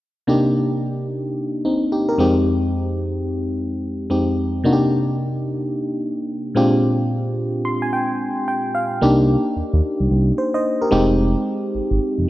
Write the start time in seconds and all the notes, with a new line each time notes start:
0.27 C3 A#3 D4 D#4 G4
1.65 C4 D#4
1.92 D#4 G4
2.09 G4 A#4
2.18 F2 G#3 C4 D#4 G4
4.10 F2 G#3 C4 D#4 G4
4.64 C3 A#3 D4 D#4 F#4
4.73 G4
6.55 A#2 G#3 C4 D4 F4 G4
7.65 C6
7.82 G#5
7.93 G5
8.48 G5
8.75 F5
9.01 C2 A#3 D4 D#4 G4
9.56 D#2
9.73 D#2
10.00 C2
10.11 C2
10.38 C5
10.54 C5 D#5
10.82 G4 A#4
10.91 F1 G#3 C4 D#4 G4
11.75 G#1
11.91 G#1
12.18 F1